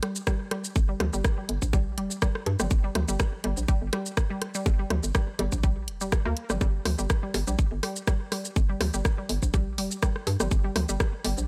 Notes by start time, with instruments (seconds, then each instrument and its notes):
0.03 synth arpeggio sound G3, cross-stick, closed hi-hat
0.16 shaker
0.27 synth arpeggio sound G3, kick, cross-stick, percussion blips, shaker
0.51 synth arpeggio sound G3, cross-stick, closed hi-hat
0.65 shaker
0.76 fm bass G1, kick, shaker
0.89 synth arpeggio sound G3
1.00 fm bass D2, cross-stick, closed hi-hat, mid tom, percussion blips
1.13 fm bass G1, synth arpeggio sound G3, shaker
1.25 kick, cross-stick, shaker
1.38 synth arpeggio sound G3
1.49 fm bass G1, closed hi-hat
1.62 fm bass A#1, kick, shaker
1.73 synth arpeggio sound G3, kick, percussion blips, shaker
1.98 fm bass F1, synth arpeggio sound G3, closed hi-hat
2.11 shaker
2.22 synth arpeggio sound G3, kick, cross-stick, shaker
2.35 cross-stick
2.46 fm bass G2, closed hi-hat, percussion blips
2.60 fm bass G1, synth arpeggio sound G3, cross-stick, mid tom, shaker
2.71 fm bass G1, kick, shaker
2.84 synth arpeggio sound G3
2.95 fm bass D2, cross-stick, closed hi-hat, mid tom
3.08 fm bass G1, synth arpeggio sound G3, shaker
3.20 kick, cross-stick, percussion blips, shaker
3.44 fm bass G1, synth arpeggio sound G3, closed hi-hat
3.57 fm bass A#1, shaker
3.68 synth arpeggio sound G3, kick, shaker
3.82 fm bass G1
3.93 synth arpeggio sound G3, cross-stick, closed hi-hat, percussion blips
4.06 shaker
4.17 kick, cross-stick, shaker
4.30 synth arpeggio sound G3
4.42 cross-stick, closed hi-hat
4.55 synth arpeggio sound G3, shaker
4.66 fm bass G1, kick, percussion blips, shaker
4.79 synth arpeggio sound G3
4.90 fm bass D2, cross-stick, closed hi-hat, mid tom
5.04 fm bass G1, shaker
5.15 synth arpeggio sound G3, kick, cross-stick, shaker
5.39 fm bass G1, synth arpeggio sound G3, closed hi-hat, percussion blips
5.52 fm bass A#1, kick, shaker
5.63 synth arpeggio sound G3, kick, shaker
5.88 fm bass F1, closed hi-hat
6.01 synth arpeggio sound G3, shaker
6.12 fm bass D1, kick, cross-stick, percussion blips, shaker
6.25 fm bass D2, synth arpeggio sound A#3, cross-stick
6.37 closed hi-hat
6.50 fm bass G1, synth arpeggio sound G3, cross-stick, mid tom, shaker
6.61 fm bass G1, synth arpeggio sound G3, kick, percussion blips, shaker
6.85 fm bass D2, cross-stick, open hi-hat, mid tom
6.99 fm bass G1, synth arpeggio sound G3, shaker
7.10 kick, cross-stick, shaker
7.23 synth arpeggio sound G3
7.34 fm bass G1, open hi-hat, percussion blips
7.47 fm bass A#1, synth arpeggio sound G3, shaker
7.59 kick, shaker
7.72 fm bass G1
7.83 synth arpeggio sound G3, cross-stick, open hi-hat
7.96 shaker
8.07 synth arpeggio sound G3, kick, cross-stick, percussion blips, shaker
8.32 synth arpeggio sound G3, cross-stick, open hi-hat
8.45 shaker
8.56 fm bass G1, kick, shaker
8.69 synth arpeggio sound G3
8.81 fm bass D2, cross-stick, open hi-hat, mid tom, percussion blips
8.94 fm bass G1, synth arpeggio sound G3, shaker
9.05 kick, cross-stick, shaker
9.18 synth arpeggio sound G3
9.29 fm bass G1, open hi-hat
9.43 fm bass A#1, kick, shaker
9.54 synth arpeggio sound G3, kick, percussion blips, shaker
9.78 fm bass F1, synth arpeggio sound G3, open hi-hat
9.91 shaker
10.03 synth arpeggio sound G3, kick, cross-stick, shaker
10.16 cross-stick
10.27 fm bass G2, open hi-hat, percussion blips
10.40 fm bass G1, synth arpeggio sound G3, cross-stick, mid tom, shaker
10.51 fm bass G1, kick, shaker
10.64 synth arpeggio sound G3
10.76 fm bass D2, cross-stick, open hi-hat, mid tom
10.89 fm bass G1, synth arpeggio sound G3, shaker
11.00 kick, cross-stick, percussion blips, shaker
11.24 fm bass G1, synth arpeggio sound G3, open hi-hat
11.38 fm bass A#1, shaker